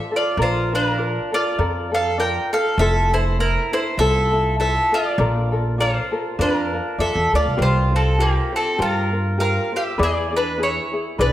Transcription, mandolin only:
0.16 0.39 F4 medium
0.16 0.41 D5 medium
0.42 0.72 F4 medium
0.42 0.75 C5 medium
0.75 1.30 D4 medium
0.75 1.34 A#4 medium
1.34 1.90 F4 medium
1.34 1.94 D5 medium
1.94 2.18 A4 medium
1.94 2.18 F5 medium
2.20 2.51 A#4 medium
2.20 2.53 G5 medium
2.53 2.77 A4 medium
2.53 2.79 F5 loud
2.79 3.11 A4 medium
2.79 3.14 E5 loud
3.14 3.37 E4 medium
3.14 3.40 C5 medium
3.40 3.71 E4 medium
3.40 3.73 A#4 medium
3.73 3.97 E4 medium
3.73 3.99 C5 medium
3.99 4.55 A4 medium
3.99 4.55 E5 loud
4.60 4.91 A4 medium
4.60 4.94 E5 medium
4.94 5.76 F4 medium
4.94 5.80 D5 medium
5.80 6.36 F4 medium
5.80 6.41 C5 medium
6.41 6.96 D4 medium
6.41 7.01 A#4 loud
7.00 7.32 A4 medium
7.00 7.31 E5 medium
7.35 7.59 F4 medium
7.35 7.61 D5 medium
7.62 7.92 F4 medium
7.62 7.95 C5 loud
7.96 8.19 C4 medium
7.96 8.19 A4 medium
8.20 8.52 A#3 medium
8.20 8.55 G4 medium
8.56 8.79 C4 medium
8.56 8.81 A4 medium
8.82 9.37 F4 medium
8.82 8.93 A4 medium
8.93 9.40 A#4 medium
9.40 9.72 A#4 medium
9.40 9.71 F5 medium
9.76 9.99 G4 medium
9.76 10.01 E5 medium
10.03 10.33 G#4 medium
10.03 10.36 D5 medium
10.36 10.60 D4 medium
10.36 10.62 B4 medium
10.63 11.17 E4 medium
10.63 11.20 C#5 medium
11.21 11.33 D4 medium
11.21 11.33 B4 loud

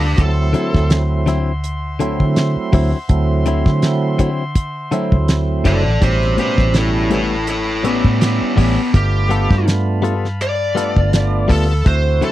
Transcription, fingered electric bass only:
0.00 0.16 D2 medium
0.18 0.52 D2 loud
0.74 2.16 D2 medium
2.20 2.54 D3 medium
2.56 muted fingered electric bass stroke soft
2.73 2.92 D2 medium
3.10 3.63 D2 loud
3.66 5.14 D3 medium
5.12 5.62 D2 medium
5.65 5.83 F#1 medium
5.87 6.01 A1 medium
6.02 6.36 A1 loud
6.58 8.00 A1 medium
8.05 8.39 A2 medium
8.41 muted fingered electric bass stroke soft
8.58 8.76 A1 medium
8.94 9.47 G1 loud
9.51 10.98 G2 medium
10.96 11.46 G1 medium
11.50 11.84 D2 loud
11.86 12.20 D2 loud

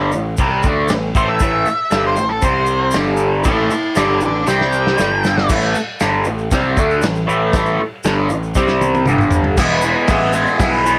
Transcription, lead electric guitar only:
1.17 1.29 C5 loud
1.28 2.03 E5 loud
2.07 2.31 C5 medium
2.29 2.42 A4 loud
2.44 2.94 C5 loud
3.44 3.70 C#5 medium
3.44 3.70 A5 loud
3.72 3.95 C#5 medium
3.72 3.97 A5 medium
3.98 4.21 A4 medium
3.98 4.22 F#5 medium
4.25 4.48 A4 medium
4.25 4.48 F#5 medium
4.48 5.47 G5 loud

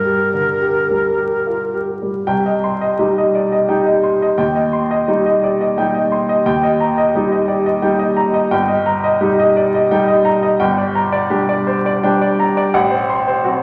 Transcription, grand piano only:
0.00 2.23 G2 soft
0.05 0.50 G4 soft
0.33 0.78 D3 soft
0.61 1.06 G4 soft
0.90 1.35 G3 soft
1.18 1.63 G4 soft
1.47 1.74 F4 soft
1.74 2.17 G4 soft
2.02 2.28 G3 soft
2.27 2.98 C2 soft
2.27 2.57 G5 medium
2.46 2.75 D#5 soft
2.64 2.93 C6 soft
2.81 3.11 D#5 soft
2.99 3.65 G3 soft
2.99 3.65 D#4 soft
2.99 3.28 G4 soft
3.18 3.46 D#5 soft
3.35 3.52 D5 soft
3.52 3.80 D#5 soft
3.69 4.34 G3 soft
3.69 4.34 D#4 soft
3.69 3.96 G5 soft
3.86 4.14 D#5 soft
4.03 4.31 C6 soft
4.22 4.39 D#5 soft
4.38 5.06 D#2 medium
4.38 4.66 G5 soft
4.55 4.83 D#5 soft
4.73 5.01 C6 soft
4.91 5.19 D#5 soft
5.08 5.73 G3 soft
5.08 5.73 D#4 soft
5.08 5.36 G4 soft
5.26 5.53 D#5 soft
5.44 5.61 D5 soft
5.61 5.88 D#5 soft
5.78 6.42 G3 soft
5.78 6.42 D#4 soft
5.78 6.05 G5 soft
5.94 6.22 D#5 soft
6.12 6.39 C6 soft
6.29 6.46 D#5 soft
6.46 7.11 D#2 medium
6.46 6.73 G5 medium
6.63 6.90 D#5 soft
6.80 7.07 A#5 soft
6.98 7.24 D#5 soft
7.15 7.78 G3 soft
7.15 7.78 D#4 soft
7.15 7.41 G4 soft
7.32 7.58 D#5 soft
7.48 7.64 D5 soft
7.66 7.92 D#5 soft
7.82 8.46 G3 soft
7.82 8.46 D#4 soft
7.82 8.09 G5 soft
7.99 8.26 D#5 medium
8.17 8.43 A#5 soft
8.34 8.50 D#5 medium
8.51 9.18 G1 medium
8.51 8.78 G5 medium
8.68 8.95 D#5 soft
8.86 9.13 A#5 medium
9.04 9.31 D#5 medium
9.21 9.86 G3 soft
9.21 9.87 D#4 soft
9.21 9.48 G4 soft
9.39 9.66 D#5 medium
9.57 9.73 D5 soft
9.74 10.01 D#5 soft
9.91 10.56 G3 medium
9.91 10.56 D#4 soft
9.91 10.18 G5 medium
10.08 10.35 D#5 medium
10.25 10.52 A#5 medium
10.43 10.59 D#5 medium
10.60 11.28 G1 medium
10.60 10.87 G5 medium
10.77 11.05 D5 soft
10.95 11.23 A#5 medium
11.12 11.41 D5 medium
11.30 11.98 G3 soft
11.30 11.98 D4 soft
11.30 11.59 G4 medium
11.49 11.77 D5 medium
11.67 11.84 C5 soft
11.86 12.14 D5 medium
12.04 12.71 G3 soft
12.04 12.71 D4 soft
12.04 12.32 G5 medium
12.22 12.49 D5 medium
12.40 12.67 A#5 medium
12.57 12.74 D5 medium
12.74 13.42 A1 medium
12.74 13.02 F#5 medium
12.91 13.19 C5 soft
13.10 13.37 C6 medium
13.28 13.55 C5 medium
13.44 13.63 F#3 soft
13.44 13.63 C4 medium
13.44 13.63 F#4 medium

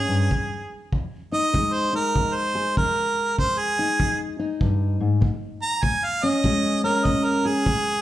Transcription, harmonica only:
0.00 0.89 G#4 medium
1.33 1.75 D#5 medium
1.73 1.94 C5 medium
1.95 2.38 A#4 medium
2.36 2.76 C5 medium
2.78 3.37 A#4 medium
3.39 3.60 C5 medium
3.59 4.18 G#4 medium
5.62 5.84 A#5 medium
5.83 6.06 G#5 medium
6.04 6.25 F5 medium
6.24 6.83 D#5 medium
6.84 7.07 A#4 medium
7.05 7.27 D#5 medium
7.25 7.49 A#4 medium
7.47 8.02 G#4 medium

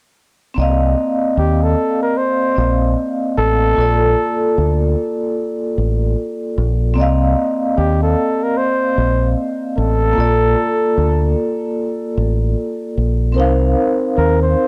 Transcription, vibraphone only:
0.54 2.52 A#3 medium
0.54 2.51 C4 medium
0.54 2.53 D5 medium
0.60 2.54 D#5 medium
0.60 2.55 F5 medium
2.54 3.72 A#3 soft
2.54 3.75 C4 soft
2.54 3.76 D5 soft
2.54 3.77 D#5 soft
2.54 3.77 F5 soft
3.73 6.91 A#3 medium
3.73 6.92 F4 medium
3.78 6.93 A4 medium
3.78 6.95 D5 medium
6.94 10.12 A#3 medium
6.94 10.11 C4 medium
6.94 10.13 D5 medium
7.00 10.14 D#5 medium
7.00 10.15 F5 medium
10.13 13.31 A#3 medium
10.13 13.32 F4 medium
10.18 13.33 A4 soft
10.18 13.34 D5 medium
13.32 14.68 C4 medium
13.32 14.68 A#4 medium
13.32 14.68 C5 medium
13.38 14.68 D#4 medium
13.38 14.68 F5 medium

